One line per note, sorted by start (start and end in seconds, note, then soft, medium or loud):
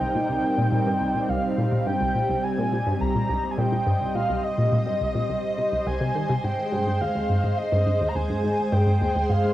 0.00 0.14 C2 medium
0.00 6.44 G3 medium
0.00 8.06 C4 medium
0.00 3.32 D#4 medium
0.00 2.14 A#4 medium
0.00 1.31 G5 loud
0.15 0.29 A#2 medium
0.29 0.39 C2 medium
0.58 0.71 A#2 loud
0.72 0.86 A#2 medium
0.86 0.92 G2 loud
1.01 1.14 C2 medium
1.15 1.29 A#2 medium
1.29 1.39 C2 medium
1.29 1.86 F5 loud
1.58 1.71 A#2 loud
1.72 1.86 A#2 medium
1.86 1.92 G2 loud
1.86 2.45 G5 loud
1.97 2.14 C2 medium
1.97 9.54 C5 medium
2.15 2.29 A#2 medium
2.29 2.39 C2 medium
2.44 3.02 G#5 loud
2.58 2.71 A#2 loud
2.72 2.86 A#2 medium
2.87 2.92 G2 loud
3.01 3.14 C2 medium
3.01 3.52 A#5 loud
3.15 3.29 A#2 medium
3.15 8.51 D#5 medium
3.29 3.39 C2 medium
3.51 3.60 G#5 medium
3.58 3.71 A#2 loud
3.58 4.15 G5 loud
3.72 3.86 A#2 medium
3.87 3.92 G2 loud
4.01 4.14 C2 medium
4.15 4.29 A#2 medium
4.15 4.45 F5 loud
4.29 4.39 C2 medium
4.44 5.88 D#5 loud
4.58 4.71 A#2 loud
4.72 4.86 A#2 medium
4.86 4.92 G2 loud
5.01 5.14 C2 medium
5.15 5.29 A#2 medium
5.29 5.39 C2 medium
5.58 5.64 C3 medium
5.72 5.78 C2 medium
5.87 6.00 C2 medium
5.87 6.45 G#5 loud
6.01 6.10 C3 loud
6.15 6.24 D#3 medium
6.29 6.35 C3 loud
6.44 6.53 G#2 medium
6.44 9.54 G#3 medium
6.44 7.02 G5 loud
6.60 9.54 G#4 medium
6.72 6.85 G2 loud
6.87 7.00 G2 medium
7.01 7.07 D#2 loud
7.01 7.60 F5 loud
7.15 7.25 D#2 medium
7.29 7.43 G2 medium
7.44 7.53 G#2 medium
7.58 8.10 D#5 loud
7.72 7.85 G2 loud
7.87 8.00 G2 medium
8.01 8.07 D#2 loud
8.08 8.17 A#5 medium
8.15 8.25 D#2 medium
8.15 8.74 G#5 loud
8.30 8.43 G2 medium
8.44 8.53 G#2 medium
8.72 8.85 G2 loud
8.72 9.31 G5 loud
8.87 9.00 G2 medium
9.01 9.07 D#2 loud
9.15 9.25 D#2 medium
9.30 9.43 G2 medium
9.30 9.54 F5 loud
9.44 9.53 G#2 medium